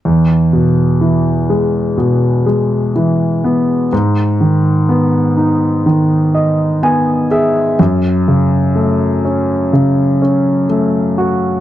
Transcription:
\new Staff \with { instrumentName = "Grand piano" } { \clef bass \time 4/4 \key e \major \tempo 4 = 62 e,8 b,8 e8 gis8 b,8 gis8 e8 b8 | gis,8 dis8 b8 dis'8 dis8 dis''8 <b gis''>8 <gis' e''>8 | fis,8 cis8 a8 cis'8 cis8 cis'8 a8 fis'8 | }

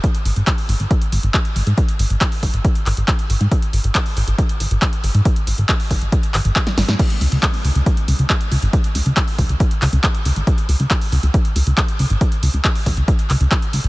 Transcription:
<<
  \new Staff \with { instrumentName = "Analog synth bass" } { \clef bass \time 4/4 \key des \lydian \tempo 4 = 138 r8 aes,,16 aes,,16 r8 aes,,16 aes,,16 r8 aes,,16 aes,,16 r8 aes,,16 aes,16 | r8 aes,,16 aes,,16 r8 aes,,16 aes,,16 r8 aes,,16 aes,,16 r8 aes,,16 aes,16 | r8 aes,,16 aes,,16 r8 aes,,16 aes,,16 r8 aes,,16 aes,,16 r8 aes,,16 aes,16 | r8 aes,,16 aes,,16 r8 aes,,16 aes,,16 r8 aes,,16 aes,,16 r8 aes,,16 aes,16 |
r8 des,16 des,16 r8 des,16 des,16 r8 des,16 des,16 r8 des,16 aes,,16 | r8 des,16 des,16 r8 des,16 des,16 r8 des,16 des,16 r8 des,16 aes,,16 | r8 des,16 des,16 r8 des,16 des,16 r8 des,16 des,16 r8 des,16 aes,,16 | r8 des,16 des,16 r8 des,16 des,16 r8 des,16 des,16 r8 des,16 aes,,16 | }
  \new DrumStaff \with { instrumentName = "Drums" } \drummode { \time 4/4 <hh bd>16 hh16 hho16 hh16 <hc hh bd>16 hho16 hho16 hh16 <hh bd>16 hh16 hho16 hh16 <hc hh bd>16 hh16 hho16 hh16 | <hh bd>16 hh16 hho16 hh16 <hc hh bd>16 hho16 <hho bd>16 hh16 <hh bd>16 hh16 <hc hho>16 hh16 <hc hh bd>16 hh16 hho16 hh16 | <hh bd>16 hh16 hho16 hh16 <hc hh bd>16 hho16 hho16 hh16 <hh bd>16 hh16 hho16 hh16 <hc hh bd>16 hh16 hho16 hh16 | <hh bd>16 hh16 hho16 hh16 <hc hh bd>16 hho16 <hho bd>16 hh16 <hh bd>16 hh16 <hc hho>16 hh16 <hc hh bd>16 <hh sn>16 <hho sn>16 <hh sn>16 |
<cymc hh bd>16 hh16 hho16 hh16 <hc hh bd>16 hho16 hho16 hh16 <hh bd>16 hh16 hho16 hh16 <hc hh bd>16 hh16 hho16 hh16 | <hh bd>16 hh16 hho16 hh16 <hc hh bd>16 hho16 <hho bd>16 hh16 <hh bd>16 hh16 <hc hho>16 hh16 <hc hh bd>16 hh16 hho16 hh16 | <hh bd>16 hh16 hho16 hh16 <hc hh bd>16 hho16 hho16 hh16 <hh bd>16 hh16 hho16 hh16 <hc hh bd>16 hh16 hho16 hh16 | <hh bd>16 hh16 hho16 hh16 <hc hh bd>16 hho16 <hho bd>16 hh16 <hh bd>16 hh16 <hc hho>16 hh16 <hc hh bd>16 hh16 hho16 hh16 | }
>>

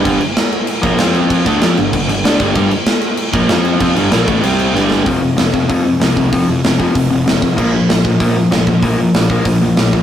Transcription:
<<
  \new Staff \with { instrumentName = "Distorted electric guitar" } { \clef bass \time 4/4 \key g \dorian \tempo 4 = 191 <g, d g>8 r2 <bes, f bes>8 <f c' f'>4~ | <f c' f'>8 <d a d'>8 <f c' f'>8 <g, d>8 <g, d>8 <g, d>8 <d a d'>8 <g, d g>8 | <g, d g>8 r2 <bes, f bes>8 <f c' f'>4 | <f c' f'>8 <g, d g>8 <bes, f bes>8 <a, e a>8 <c g c'>4 <g, d g>4 |
\key f \mixolydian r1 | r1 | r1 | r1 | }
  \new Staff \with { instrumentName = "Overdriven electric guitar" } { \clef bass \time 4/4 \key g \dorian <g, d g>8 r2 <bes, f bes>8 <f c' f'>4~ | <f c' f'>8 <d a d'>8 <f c' f'>8 <g, d>8 <g, d>8 <g, d>8 <d a d'>8 <g, d g>8 | <g, d g>8 r2 <bes, f bes>8 <f c' f'>4 | <f c' f'>8 <g, d g>8 <bes, f bes>8 <a, e a>8 <c g c'>4 <g, d g>4 |
\key f \mixolydian r1 | r1 | r1 | r1 | }
  \new Staff \with { instrumentName = "Overdriven electric guitar" } { \clef bass \time 4/4 \key g \dorian <g, d g>8 r2 <bes, f bes>8 <f c' f'>4~ | <f c' f'>8 <d a d'>8 <f c' f'>8 <g, d>8 <g, d>8 <g, d>8 <d a d'>8 <g, d g>8 | <g, d g>8 r2 <bes, f bes>8 <f c' f'>4 | <f c' f'>8 <g, d g>8 <bes, f bes>8 <a, e a>8 <c g c'>4 <g, d g>4 |
\key f \mixolydian <f, c f>8 <f, c>8 <f, c>8 <f, c>8 <f, c f>8 <f, c>8 <f, c>8 <f, c>8 | <f, c f>8 <f, c>8 <f, c>8 <f, c f>8 <f, c>8 <f, c>8 <f, c>8 <f, c>8 | <bes, f bes>8 <bes, f>8 <bes, f>8 <bes, f>8 <bes, f bes>8 <bes, f>8 <bes, f>8 <bes, f>8 | <bes, f bes>8 <bes, f>8 <bes, f>8 <bes, f bes>8 <bes, f>8 <bes, f>8 <bes, f>8 <bes, f>8 | }
  \new Staff \with { instrumentName = "Picked electric bass" } { \clef bass \time 4/4 \key g \dorian g,,8 r2 bes,,8 f,4~ | f,8 d,8 f,8 g,,8 g,,8 g,,8 d,8 g,,8 | g,,8 r2 bes,,8 f,4 | f,8 g,,8 bes,,8 a,,8 c,4 g,,4 |
\key f \mixolydian f,,4 f,,8 f,8 f,4 c,8 c,8 | f,,8 f,8 f,,4 f,,8 f,,8 f,,8 f,,8 | bes,,4 bes,,8 bes,8 bes,4 f,,8 f,,8 | bes,,8 bes,8 bes,,4 bes,,8 bes,,8 bes,,8 bes,,8 | }
  \new DrumStaff \with { instrumentName = "Drums" } \drummode { \time 4/4 <cymc bd>8 cymc8 <cymc sn>8 cymc8 cymc8 <cymc bd>8 <cymc sn>8 cymc8 | <cymc bd>8 <cymc bd>8 <cymc sn>8 cymc8 <cymc bd>8 cymc8 <cymc sn>8 <cymc bd>8 | <cymc bd>8 cymc8 <cymc sn>8 cymc8 cymc8 <cymc bd>8 <cymc sn>8 cymc8 | <cymc bd>8 cymc8 <cymc sn>8 <cymc bd>8 cymc8 cymc8 sn8 sn8 |
<hho bd>4 <hho sn>8 bd8 <hho bd>4 <hho sn>8 bd8 | <hho bd>4 <hho sn>8 bd8 <hho bd>4 <hho sn>8 bd8 | <cymc bd>4 <hho sn>8 bd8 <hho bd>4 <hho sn>8 bd8 | <hho bd>4 <hho sn>8 bd8 <hho bd>4 <hho sn>8 bd8 | }
>>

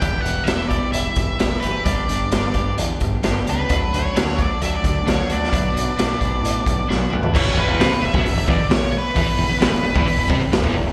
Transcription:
<<
  \new Staff \with { instrumentName = "Lead electric guitar" } { \time 4/4 \key e \dorian \tempo 4 = 132 g''8 fis''8 e''8 d''8 e''4. b'8 | d''2 r4. b'8~ | b'8 cis''4 d''8 e''16 d''16 d''8 cis''8 d''8~ | d''2. r4 |
cis''8 b'4 e''4 d''8 cis''8 b'8~ | b'2~ b'8 r4. | }
  \new Staff \with { instrumentName = "Clean electric guitar" } { \clef bass \time 4/4 \key e \dorian <e, b, e g e' g'>8 <e g e' g'>8 <e, b, e g e' g'>8 <e g e' g'>4. <e g e' g'>8 <e g e' g'>8 | <g, d g b d' g'>8 <g b d' g'>8 <g, d g b d' g'>8 <g b d' g'>4. <g b d' g'>8 <g b d' g'>8 | <d fis a d' fis'>8 <a d' fis'>8 <d fis a d' fis'>8 <a d' fis'>4. <fis a d' fis'>8 <a d' fis'>8 | <b, fis b d' fis'>8 <b d' fis'>8 <b, fis b d' fis'>8 <b d' fis'>4. <fis b d' fis'>8 <b d' fis'>8 |
<e, b, e>8 <e, b,>8 <e, b,>8 <e, b,>8 <e, b,>8 <e, b,>8 <e, b,>8 <e, b,>8 | <e, b,>8 <e, b,>8 <e, b,>8 <e, b,>8 <e, b,>8 <e, b,>8 <e, b,>8 <e, b,>8 | }
  \new Staff \with { instrumentName = "Distorted electric guitar" } { \clef bass \time 4/4 \key e \dorian r1 | r1 | r1 | r1 |
<e, e>16 e,16 e,16 e,16 <c c'>16 r16 e,16 <fis, fis>16 e,16 e,16 <e, e>16 r4 r16 | <e, e>16 r16 e,16 r16 <a, a>16 e,16 e,16 <e, e>16 r16 e,16 <c c'>16 r8 <e, e>16 e,16 e,16 | }
  \new Staff \with { instrumentName = "Overdriven electric guitar" } { \clef bass \time 4/4 \key e \dorian r1 | r1 | r1 | r1 |
<e, e>16 e,16 e,16 e,16 <c c'>16 r16 e,16 <fis, fis>16 e,16 e,16 <e, e>16 r4 r16 | <e, e>16 r16 e,16 r16 <a, a>16 e,16 e,16 <e, e>16 r16 e,16 <c c'>16 r8 <e, e>16 e,16 e,16 | }
  \new Staff \with { instrumentName = "Fingered electric bass" } { \clef bass \time 4/4 \key e \dorian e,,8 e,,8 e,,4 e,,8 e,,8 e,,8 fis,,8 | g,,8 g,,8 g,,8 g,,8 e,8 g,,8 g,,8 cis,8 | d,8 d,8 d,4 d,8 d,8 d,8 d,8 | b,,8 b,,8 b,,8 b,,8 a,8 b,,8 b,,8 d,8 |
e,,16 e,,16 e,,16 e,,16 c,16 r16 e,,16 fis,,16 e,,16 e,,16 e,,16 r4 r16 | e,,16 r16 e,,16 r16 a,,16 e,,16 e,,16 e,,16 r16 e,,16 c,16 r8 e,,16 e,,16 e,,16 | }
  \new DrumStaff \with { instrumentName = "Drums" } \drummode { \time 4/4 <hh bd>8 hh8 <hh sn>8 <hh bd>8 hh8 <hh bd>8 <hh sn>8 hh8 | <hh bd>8 hh8 <hh sn>8 <hh bd>8 hh8 <hh bd>8 <hh sn>8 hh8 | <hh bd>8 hh8 <hh sn>8 <hh bd>8 hh8 <hh bd>8 <hh sn>8 hh16 sn16 | <hh bd>8 hh8 <hh sn>8 <hh bd>8 hh8 <hh bd>8 sn8 toml16 tomfh16 |
<cymc bd>4 <hho sn>8. bd16 hho8 bd8 <hho sn>4 | <hho bd>4 <hho sn>8. bd16 hho8 bd8 <hho sn>16 bd8. | }
>>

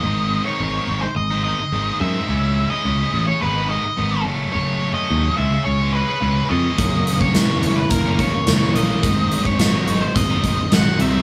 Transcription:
<<
  \new Staff \with { instrumentName = "Lead electric guitar" } { \time 4/4 \key gis \phrygian \tempo 4 = 107 dis''8. cis''4 bis'16 dis''8 dis''4 e''8~ | e''8. dis''4 cis''16 b'8 dis''4 r8 | cis''8. dis''8. e''8 cis''8 b'4 dis''8~ | dis''8. cis''4 b'16 ais'8 cis''4 dis''8~ |
dis''8. cis''4 bis'16 dis''4 fis''8 e''8 | }
  \new Staff \with { instrumentName = "Distorted electric guitar" } { \clef bass \time 4/4 \key gis \phrygian <gis, dis gis bis dis'>8. <gis bis dis'>16 <gis, dis gis bis dis'>16 <gis bis dis'>16 <dis gis bis dis'>8. <gis bis dis'>16 <dis gis bis dis'>8 <gis, dis gis bis dis'>8 <dis gis bis dis'>8 | <cis gis cis' e'>8. <gis cis' e'>16 <cis gis cis' e'>16 <gis cis' e'>16 <cis gis cis' e'>8 <gis, dis gis b dis'>16 <gis b dis'>16 <dis gis b dis'>8 <gis, dis gis b dis'>8 <fis, cis fis a cis'>8 | <fis, cis fis a cis'>8. <fis a cis'>16 <fis, cis fis a cis'>16 <fis a cis'>16 <cis e gis cis'>8. <e gis cis'>16 <cis e gis cis'>8 <cis e gis cis'>8 <cis e gis cis'>8 | <fis, cis fis ais cis'>8. <fis ais cis'>16 <fis, cis fis ais cis'>16 <fis ais cis'>16 <cis fis ais cis'>8. <fis ais cis'>16 <cis fis ais cis'>8 <fis, cis fis ais cis'>8 <cis fis ais cis'>8 |
<gis, dis gis bis dis'>8. <gis bis dis'>16 <gis, dis gis bis dis'>16 <gis bis dis'>16 <dis gis bis dis'>8. <gis bis dis'>16 <dis gis bis dis'>8 <gis, dis gis bis dis'>8 <dis gis bis dis'>8 | }
  \new Staff \with { instrumentName = "Overdriven electric guitar" } { \clef bass \time 4/4 \key gis \phrygian r1 | r1 | r1 | fis,8 cis8 e8 e'8 ais8 cis8 e8 ais8 |
gis,8 dis8 fis8 dis'8 bis8 dis8 fis8 bis8 | }
  \new Staff \with { instrumentName = "Picked electric bass" } { \clef bass \time 4/4 \key gis \phrygian gis,,4 gis,,8 gis,,8 gis,,4 gis,,8 fis,8 | cis,4 cis,8 a,,8 gis,,4 gis,,8 fis,,8 | fis,,4 dis,8 cis,8 cis,4 cis,8 eis,8 | fis,,4 fis,,8 fis,,8 fis,,4 fis,,8 ais,,8 |
gis,,4 gis,,8 gis,,8 gis,,4 gis,,8 bis,,8 | }
  \new DrumStaff \with { instrumentName = "Drums" } \drummode { \time 4/4 r4 r4 r4 r4 | r4 r4 r4 r4 | r4 r4 r4 r4 | <hh bd>8 hh16 bd16 <hh sn>8 hh8 <hh bd>8 <hh bd>8 <hh sn>8 hh8 |
<hh bd>8 hh16 bd16 <hh sn>8 hh8 <hh bd>8 <hh bd>8 <hh sn>8 hh8 | }
>>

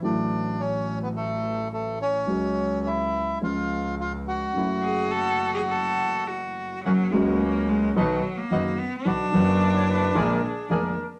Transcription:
<<
  \new Staff \with { instrumentName = "Flute" } { \time 4/4 \key fis \minor \tempo 4 = 106 r1 | r1 | r1 | \key fis \major r1 |
r4 d''16 cis''16 b'8 ais'8 gis'8 ais'8. r16 | }
  \new Staff \with { instrumentName = "Bandoneon" } { \time 4/4 \key fis \minor r1 | r1 | r1 | \key fis \major <ais cis' fis'>8 <ais cis' fis'>4. <b dis' fis'>8 r8 <b dis' fis'>8 r8 |
<b d' fis'>8 <b d' fis'>4. <ais d' gis'>8 r8 <ais d' gis'>8 r8 | }
  \new Staff \with { instrumentName = "Bandoneon" } { \time 4/4 \key fis \minor d'4 cis'8. b16 a4 a8 cis'8~ | cis'4 e'4 eis'4 eis'8 fis'8~ | fis'2. r4 | \key fis \major r1 |
r1 | }
  \new Staff \with { instrumentName = "Cello" } { \time 4/4 \key fis \minor r1 | r1 | r8 gis'8 a'8. gis'16 a'4 fis'4 | \key fis \major fis8 gis8 ais8 gis8 fis8. ais8. b8 |
d'2.~ d'8 r8 | }
  \new Staff \with { instrumentName = "Grand piano" } { \clef bass \time 4/4 \key fis \minor <a,, a, e fis a e'>1 | <cis, cis fis gis fis'>2 <cis, cis eis gis eis'>2 | <fis, cis fis a e'>1 | \key fis \major <fis, cis fis ais fis'>8 <cis, cis fis ais fis'>4. <b,, b, dis fis b fis'>8 r8 <fis,, fis, dis fis b fis'>8 r8 |
<b,, b, d fis b fis'>8 <fis,, fis, d fis b fis'>4. <ais,, ais, d gis ais eis'>8 r8 <eis,, eis, d gis ais eis'>8 r8 | }
  \new Staff \with { instrumentName = "Double bass" } { \clef bass \time 4/4 \key fis \minor a,,1 | cis,2 cis,2 | fis,,1 | \key fis \major fis,,8 cis,4. b,,8 r8 fis,,8 r8 |
b,,8 fis,,4. ais,,8 r8 eis,,8 r8 | }
>>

